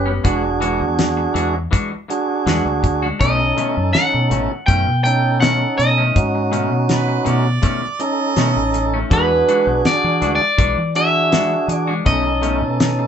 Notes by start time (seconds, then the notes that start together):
Already playing: F#1 C#4 G4 B4
0.06 G3 B3 C#4
0.24 E1 E3 G#3 D4 F#4 G#4, kick, closed hi-hat
0.43 muted clean electric guitar stroke
0.61 E3 G#3 D4 F#4, closed hi-hat
0.81 E2, muted clean electric guitar stroke
0.99 snare, closed hi-hat
1.17 muted clean electric guitar stroke
1.34 E2 E3 G#3 D4 F#4, closed hi-hat
1.54 muted clean electric guitar stroke
1.71 E3 G#3 D4 F#4, kick, closed hi-hat
1.92 muted clean electric guitar stroke
2.08 D4 F#4 G#4, muted clean electric guitar stroke, closed hi-hat
2.46 E2 E3 G#3 D4 F#4, snare, closed hi-hat
2.65 D2, muted clean electric guitar stroke
2.83 muted clean electric guitar stroke, kick, closed hi-hat
3.02 G#3 D4 F#4
3.20 B1 B2 D#3 A3 C#4 D#4 A4 D#5, kick, closed hi-hat
3.40 muted clean electric guitar stroke
3.57 B2 D#3 A3 C#4, closed hi-hat
3.77 F#2, muted clean electric guitar stroke
3.93 F#5, muted fingered electric bass stroke, snare, closed hi-hat
4.14 B2, muted clean electric guitar stroke
4.30 A1 B2 D#3 A3 C#4, closed hi-hat
4.51 muted clean electric guitar stroke
4.66 F#2 B2 D#3 A3 C#4 G5, kick, closed hi-hat
4.87 B2, muted clean electric guitar stroke
5.04 C#4 D#4 A4 G5, muted clean electric guitar stroke, closed hi-hat
5.40 B2 D#3 A3 C#4 F#5, snare, closed hi-hat
5.61 muted clean electric guitar stroke
5.78 B2 D#5, muted clean electric guitar stroke, closed hi-hat
5.98 D#3 A3 C#4
6.16 G#2 C#4 D#4 F#4, kick, closed hi-hat
6.35 muted clean electric guitar stroke
6.51 B2 D#3 A3 C#4, closed hi-hat
6.72 B2, muted clean electric guitar stroke
6.89 B4, snare, closed hi-hat
7.08 muted clean electric guitar stroke
7.25 B2 D#3 A3 C#4 D5, closed hi-hat
7.45 muted clean electric guitar stroke
7.62 B2 D#3 A3 C#4, kick, closed hi-hat
7.82 muted clean electric guitar stroke
7.99 C#4 D#4 A4 D#5, muted clean electric guitar stroke, closed hi-hat
8.36 B2 D#3 A3 C#4, snare, closed hi-hat
8.56 A1, muted clean electric guitar stroke
8.74 muted clean electric guitar stroke, closed hi-hat
8.94 D#3 A3 C#4
9.10 E2 E3 G#3 D4 F#4 G#4 B4, kick, closed hi-hat
9.31 muted clean electric guitar stroke
9.48 E3 G#3 D4 F#4, closed hi-hat
9.67 B1, muted clean electric guitar stroke
9.85 D5, snare, closed hi-hat
10.04 E3, muted clean electric guitar stroke
10.21 D2 E3 G#3 D4 F#4, closed hi-hat
10.35 D5
10.41 muted clean electric guitar stroke
10.58 B1 E3 G#3 D4 F#4, kick, closed hi-hat
10.78 E3, muted clean electric guitar stroke
10.95 D4 F#4 G#4 E5, muted clean electric guitar stroke, closed hi-hat
11.32 E3 G#3 D4 F#4, snare, closed hi-hat
11.52 muted clean electric guitar stroke
11.68 E3, muted clean electric guitar stroke, closed hi-hat
11.75 D5
11.87 G#3 D4 F#4
12.05 B1 B2 D#3 A3 C#4 D#4 A4 D#5, kick, closed hi-hat
12.25 muted clean electric guitar stroke
12.42 B2 D#3 A3 C#4, closed hi-hat
12.62 B2, muted clean electric guitar stroke
12.80 snare, closed hi-hat
12.99 muted clean electric guitar stroke